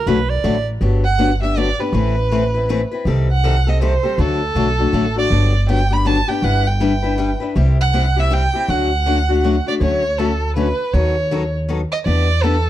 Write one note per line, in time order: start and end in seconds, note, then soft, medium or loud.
0.06 0.38 B1 medium
0.06 0.18 D3 medium
0.06 0.18 F#3 loud
0.06 0.18 A3 loud
0.06 0.18 E4 medium
0.06 0.18 F#4 loud
0.06 0.31 B4 medium
0.30 0.67 D5 loud
0.44 0.76 A1 medium
0.44 0.55 D3 medium
0.44 0.55 F#3 medium
0.44 0.55 A3 medium
0.44 0.55 E4 medium
0.44 0.56 F#4 medium
0.81 1.71 G1 medium
0.81 1.02 D3 medium
0.81 1.02 F#3 medium
0.81 1.02 B3 medium
0.81 1.03 D4 medium
0.81 1.03 G4 medium
1.05 1.39 F#5 loud
1.19 1.30 D3 medium
1.19 1.30 F#3 medium
1.19 1.30 B3 medium
1.19 1.30 D4 medium
1.19 1.30 G4 medium
1.42 1.56 B3 soft
1.42 1.56 D4 soft
1.42 1.56 G4 medium
1.42 1.59 E5 medium
1.57 1.68 D3 medium
1.57 1.68 F#3 medium
1.57 1.68 B3 medium
1.57 1.68 D4 medium
1.57 1.68 G4 medium
1.57 1.82 D5 medium
1.79 1.94 B3 soft
1.79 1.94 D4 medium
1.79 1.93 G4 medium
1.79 2.92 B4 medium
1.93 2.83 A1 loud
1.93 2.14 E3 medium
1.93 2.15 A3 medium
1.93 2.15 C4 medium
1.93 2.15 E4 medium
1.93 2.15 B4 medium
2.32 2.42 E3 medium
2.32 2.43 A3 medium
2.32 2.43 C4 medium
2.32 2.43 E4 medium
2.32 2.43 B4 medium
2.54 2.69 C4 soft
2.54 2.69 E4 soft
2.54 2.68 B4 medium
2.69 2.80 E3 medium
2.69 2.80 A3 medium
2.69 2.80 C4 medium
2.69 2.80 E4 medium
2.69 2.80 B4 loud
2.92 3.06 C4 soft
2.92 3.06 E4 medium
2.92 3.06 B4 medium
3.05 3.96 C2 medium
3.05 3.27 C3 medium
3.05 3.27 D#3 medium
3.05 3.27 G3 medium
3.05 3.27 C4 medium
3.05 3.28 G4 medium
3.05 3.28 A4 medium
3.32 3.70 F#5 medium
3.43 3.55 C3 medium
3.43 3.55 D#3 medium
3.43 3.55 G3 medium
3.43 3.55 C4 medium
3.43 3.55 G4 medium
3.43 3.55 A4 medium
3.67 3.81 G3 soft
3.67 3.81 C4 soft
3.67 3.81 G4 medium
3.67 3.81 A4 medium
3.67 3.82 D#5 medium
3.81 3.92 C3 medium
3.81 3.93 D#3 medium
3.81 3.93 G3 medium
3.81 3.93 C4 medium
3.81 3.93 G4 medium
3.81 3.93 A4 medium
3.81 4.22 C5 medium
4.03 4.18 G3 soft
4.03 4.18 C4 soft
4.03 4.18 G4 medium
4.03 4.18 A4 medium
4.18 4.48 D2 medium
4.18 4.39 D3 medium
4.18 4.40 F#3 medium
4.18 4.40 A3 medium
4.18 4.40 D4 medium
4.18 4.40 F#4 medium
4.18 5.17 A4 medium
4.55 4.87 B1 medium
4.55 4.67 D3 medium
4.55 4.67 F#3 medium
4.55 4.67 A3 medium
4.55 4.67 D4 medium
4.55 4.67 F#4 medium
4.79 4.93 A3 soft
4.79 4.93 D4 soft
4.79 4.93 F#4 soft
4.93 5.25 A1 medium
4.93 5.04 D3 medium
4.93 5.05 F#3 medium
4.93 5.05 A3 medium
4.93 5.05 D4 medium
4.93 5.05 F#4 medium
5.16 5.31 A3 soft
5.16 5.30 D4 soft
5.16 5.30 F#4 medium
5.16 5.66 D5 medium
5.30 6.21 G1 medium
5.30 5.52 D3 medium
5.30 5.52 F#3 medium
5.30 5.52 B3 medium
5.30 5.52 D4 medium
5.30 5.52 G4 medium
5.68 5.80 D3 medium
5.68 5.80 F#3 medium
5.68 5.80 B3 medium
5.68 5.80 D4 medium
5.68 5.80 G4 medium
5.68 5.94 G5 loud
5.90 6.04 B3 soft
5.90 6.05 D4 soft
5.90 6.05 G4 medium
5.90 6.08 B5 medium
6.05 6.16 D3 medium
6.05 6.17 F#3 medium
6.05 6.17 B3 medium
6.05 6.17 D4 medium
6.05 6.17 G4 medium
6.05 6.30 A5 loud
6.28 6.43 B3 soft
6.28 6.42 D4 soft
6.28 6.42 G4 medium
6.28 6.45 G5 medium
6.42 7.33 G1 medium
6.42 6.64 G3 medium
6.42 6.64 D4 medium
6.42 6.64 E4 medium
6.42 6.64 B4 medium
6.42 6.68 F#5 loud
6.67 7.42 G5 medium
6.80 6.92 G3 medium
6.80 6.92 D4 medium
6.80 6.92 E4 medium
6.80 6.92 B4 medium
7.02 7.17 D4 soft
7.02 7.18 E4 medium
7.02 7.17 B4 medium
7.18 7.29 G3 medium
7.18 7.30 D4 medium
7.18 7.30 E4 medium
7.18 7.30 B4 medium
7.40 7.56 D4 soft
7.40 7.55 E4 medium
7.40 7.55 B4 medium
7.55 8.46 C2 loud
7.55 7.77 C3 medium
7.55 7.77 G3 medium
7.55 7.77 C4 medium
7.55 7.77 E4 medium
7.55 7.77 G4 medium
7.81 8.21 F#5 loud
7.93 8.04 C3 medium
7.93 8.05 G3 medium
7.93 8.05 C4 medium
7.93 8.05 E4 loud
7.93 8.05 G4 medium
8.16 8.30 C4 soft
8.16 8.30 E4 medium
8.16 8.30 G4 medium
8.16 8.35 E5 medium
8.31 8.42 C3 medium
8.31 8.42 G3 medium
8.31 8.42 C4 medium
8.31 8.42 E4 medium
8.31 8.42 G4 loud
8.31 8.72 G5 loud
8.53 8.68 C4 soft
8.53 8.68 E4 medium
8.53 8.68 G4 medium
8.68 9.58 D2 loud
8.68 8.89 D3 medium
8.68 8.89 F#3 medium
8.68 8.89 A3 medium
8.68 8.89 D4 medium
8.68 8.90 F#4 medium
8.68 9.67 F#5 medium
9.06 9.17 D3 medium
9.06 9.17 F#3 medium
9.06 9.17 A3 medium
9.06 9.17 D4 medium
9.06 9.18 F#4 medium
9.29 9.43 A3 soft
9.29 9.44 D4 medium
9.29 9.43 F#4 medium
9.44 9.54 D3 medium
9.44 9.55 F#3 medium
9.44 9.55 A3 medium
9.44 9.55 D4 medium
9.44 9.55 F#4 medium
9.66 9.81 A3 soft
9.66 9.81 D4 soft
9.66 9.80 F#4 medium
9.66 9.74 D5 medium
9.80 10.71 D2 medium
9.80 10.02 D3 medium
9.80 10.02 F#3 medium
9.80 10.02 A3 medium
9.80 10.02 C#4 medium
9.80 10.02 F#4 medium
9.80 10.20 C#5 medium
10.18 10.29 D3 medium
10.18 10.30 F#3 medium
10.18 10.30 A3 medium
10.18 10.30 C#4 medium
10.18 10.30 F#4 medium
10.18 10.55 A4 medium
10.56 10.67 D3 medium
10.56 10.67 F#3 medium
10.56 10.67 A3 medium
10.56 10.68 C#4 medium
10.56 10.68 F#4 medium
10.56 10.95 B4 medium
10.93 11.84 D#2 medium
10.93 11.14 D#3 medium
10.93 11.14 F#3 medium
10.93 11.15 B3 medium
10.93 11.15 D#4 medium
10.93 11.15 A4 medium
10.93 11.54 C#5 medium
11.31 11.42 D#3 medium
11.31 11.42 F#3 medium
11.31 11.43 B3 medium
11.31 11.43 D#4 medium
11.31 11.43 A4 medium
11.69 11.80 D#3 medium
11.69 11.80 F#3 medium
11.69 11.80 B3 medium
11.69 11.80 D#4 medium
11.69 11.80 A4 medium
11.92 11.99 D#5 medium
12.06 12.70 E2 medium
12.06 12.27 E3 medium
12.06 12.27 B3 medium
12.06 12.27 D4 medium
12.06 12.27 G4 medium
12.06 12.44 D5 loud
12.43 12.54 E3 medium
12.43 12.55 B3 medium
12.43 12.55 D4 medium
12.43 12.55 G4 medium
12.43 12.70 A4 medium